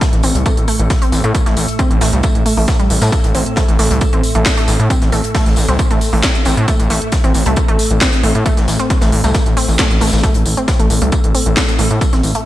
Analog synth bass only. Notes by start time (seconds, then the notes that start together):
0.13 A1
0.23 A1
0.35 C2
0.57 A1
0.79 A1
1.12 A1
1.24 A2
1.46 A1
1.57 A1
1.91 A1
2.01 A1
2.13 C2
2.35 A1
2.57 A1
2.90 A1
3.02 A2
3.24 A1
3.35 A1
3.68 A1
3.79 A1
3.91 C2
4.13 A1
4.35 A1
4.68 A1
4.80 A2
5.02 A1
5.12 A1
5.46 A1
5.57 A1
5.69 C2
5.91 A1
6.13 A1
6.46 A1
6.57 A2
6.80 A1
6.90 A1
7.24 A1
7.35 A1
7.46 C2
7.68 A1
7.91 A1
8.24 A1
8.35 A2
8.57 A1
8.68 A1
9.02 A1
9.12 A1
9.24 C2
9.46 A1
9.68 A1
9.91 A1
10.01 A1
10.13 A1
10.35 A1
10.46 A1
10.79 A1
10.90 A1
11.02 C2
11.24 A1
11.46 A1
11.79 A1
11.91 A2
12.13 A1
12.23 A1